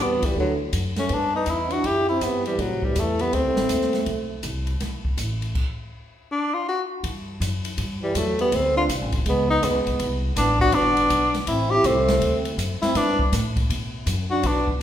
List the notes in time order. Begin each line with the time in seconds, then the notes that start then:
0.00 E2 G3 B3
0.22 E3 G3, muted upright bass stroke, kick, ride
0.35 D2 D3, kick
0.40 F#3
0.73 F#2, kick, hi-hat pedal, ride
0.96 A3 C#4, snare, ride
1.09 G2 B3, kick, ride
1.13 D4
1.35 B3 D#4
1.46 E2 B3, kick, hi-hat pedal, ride
1.51 E4
1.70 D4 F#4, ride
1.84 F#2 E4 G4, kick, ride
2.09 C4 E4
2.21 G2 G3 B3, kick, hi-hat pedal, ride
2.46 E3 G3, ride
2.59 A2 C3 F#3, kick, ride
2.83 E3 G3, kick
2.96 E2 E3 A3, kick, hi-hat pedal, ride
3.19 G3 B3, ride
3.33 D2 A3 C4, kick, ride
3.45 C2
3.56 A1, snare
3.69 D#2, kick, hi-hat pedal, ride
3.82 snare
3.93 snare, ride
4.06 B1, kick, ride
4.43 C2, kick, hi-hat pedal, ride
4.67 ride
4.80 B1, kick, snare, ride
5.05 kick
5.17 A1, kick, hi-hat pedal, ride
5.42 ride
5.55 kick, crash
6.32 D4
6.54 F4
6.69 F#4
7.03 G2, kick, ride
7.40 F#2, kick, hi-hat pedal, ride
7.65 ride
7.78 G2, kick, ride
8.03 E3 G3
8.15 E2 F#3 A3, kick, hi-hat pedal, ride
8.39 G3 B3, ride
8.52 D2 A3 C4, kick, ride
8.76 D4 F4
8.89 C2, kick, hi-hat pedal, ride
9.01 A1
9.12 F1, kick, ride
9.26 C#2 G#3 B3, kick, ride
9.49 B3 D#4
9.63 D#2 G#3 B3, kick, hi-hat pedal, ride
9.75 C#2
9.87 B1, ride
9.99 C2, kick, ride
10.36 A1 B3 D4, kick, snare, hi-hat pedal, ride
10.60 D4 F#4, kick
10.72 G1 B3 D4, kick, ride
10.97 ride
11.10 B1, kick, hi-hat pedal, ride
11.34 snare, ride
11.47 A1 C4 E4, kick, ride
11.71 E4 G4
11.84 C2 A3 C4, kick, hi-hat pedal, ride
12.08 snare, ride
12.21 D2, kick, ride
12.45 ride
12.58 F#2, kick, hi-hat pedal, ride
12.82 C4 E4, muted upright bass stroke, snare, ride
12.95 G2 B3 D4, kick, snare, ride
13.19 kick
13.32 A2, kick, snare, hi-hat pedal, ride
13.56 kick, ride
13.70 B2, kick, ride
14.06 F#2, kick, hi-hat pedal, ride
14.31 D4 F#4
14.43 B1 B3 D4, kick, ride
14.68 kick